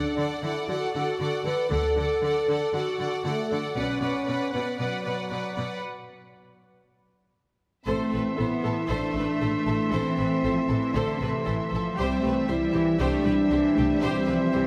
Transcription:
Already playing: D4 A4 D5 F#5
0.17 D3 A4 D5 F#5
0.42 D3 E4 A4 D5 F#5
0.67 D3 F#4 A4 D5 F#5
0.95 D3 A4 D5 F#5
1.20 D3 A4 D5 F#5
1.44 D3 A4 B4 D5 F#5
1.70 D2 D3 A4 D5 F#5
1.96 D3 A4 D5 F#5
2.23 D3 A4 D5 F#5
2.48 D3 A4 D5 F#5
2.74 D3 F#4 A4 D5 F#5
2.98 D3 A4 D5 F#5
3.24 D3 A3 A4 D5 F#5
3.50 D3 A4 D5 F#5
3.75 B1 B2 C#4 B4 D5 F#5
4.00 B2 B4 D5 F#5
4.27 B2 B4 D5 F#5
4.52 B2 B3 B4 D5 F#5
4.78 B2 F#3 B4 D5 F#5
5.02 B2 B4 D5 F#5
5.30 B2 B4 D5 F#5
5.54 B2 B4 D5 F#5
7.86 A1 E3 A3 C4 E4 A4 C5 E5 C6
8.13 A1 A4 B4
8.37 A1 B3 E4 A4 C5
8.64 A1 A4
8.89 A1 A3 D4 A4 C5
9.15 A1 A4 B4
9.41 A1 A4 C5
9.67 A1 A4
9.92 A1 E3 C4 A4 C5
10.18 A1 A4 B4
10.43 A1 F3 A4 C5
10.69 A1 E3 A4
10.94 A1 D3 A3 A4 C5
11.20 A1 C3 A4 B4
11.46 A1 E3 A4 C5
11.70 A1 F3 A4
11.96 C2 E3 G3 C4 E4 G4 C5 E5
12.01 C4 G4
12.22 C2 A3 G4 B4
12.48 C2 G3 E4 G4 C5
12.73 C2 E3 G4
12.99 C2 A3 D4 G4 C5
13.25 C2 G3 G4 B4
13.50 C2 E3 G4 C5
13.76 C2 A3 G4
14.02 C2 G3 C4 G4 C5
14.27 C2 F3 G4 B4
14.53 C2 E3 G4 C5

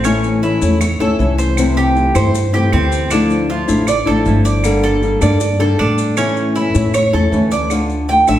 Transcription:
Already playing: A1
0.03 E3 A3 C#4 E4, claves, maracas
0.23 maracas
0.42 E3 A3 C#4 E4, maracas
0.61 E2 A3 C#4 E4, maracas
0.80 C#5, muted nylon-string guitar stroke, claves, maracas
1.00 D2 A3 C#4 E4 A4, maracas
1.19 C2 E3 A3 C#4 E4, maracas
1.38 C5, maracas
1.57 C3 E3 A3 C4 E4, claves, maracas
1.77 G4, maracas
1.95 E3 A3 C4 E4, maracas
2.15 G2 E3 A3 C4 E4 C5, claves, maracas
2.34 muted nylon-string guitar stroke, maracas
2.53 E3 A3 C4 E4 G4, maracas
2.72 D2 E3 A3 C4 E4, claves, maracas
2.92 maracas
3.10 D3 F3 A3 D4 E4, claves, maracas
3.30 maracas
3.49 F3 A3 D4 E4 F4, maracas
3.68 A1 F3 A3 D4 E4, maracas
3.87 D5, muted nylon-string guitar stroke, claves, maracas
4.06 A1 F3 A3 D4 E4 A4, maracas
4.25 G1 F3 A3 D4 E4, maracas
4.45 D5, maracas
4.63 D3 G3 A#3 D4 A4, claves, maracas
4.84 A4, maracas
5.02 G3 A#3 D4 A4, maracas
5.21 G2 G3 A#3 D4 A4 D5, claves, maracas
5.40 muted nylon-string guitar stroke, maracas
5.59 G3 A#3 D4 A4, maracas
5.78 A2 G3 D4 A4, claves, maracas
5.98 maracas
6.16 E3 A3 C#4 E4, claves, maracas
6.36 maracas
6.55 E3 A3 C#4 E4, maracas
6.74 A2 A3 C#4 E4, maracas
6.94 C#5, muted nylon-string guitar stroke, claves, maracas
7.13 E2 A3 C#4 E4 A4, maracas
7.32 D2 E3 A3 C#4 E4, maracas
7.51 D5, maracas
7.70 D3 A3 D4 F4, claves, maracas
7.90 maracas
8.09 D3 A3 D4 F4 G5, maracas
8.27 A1 A3 D4 F4 E5, claves, maracas

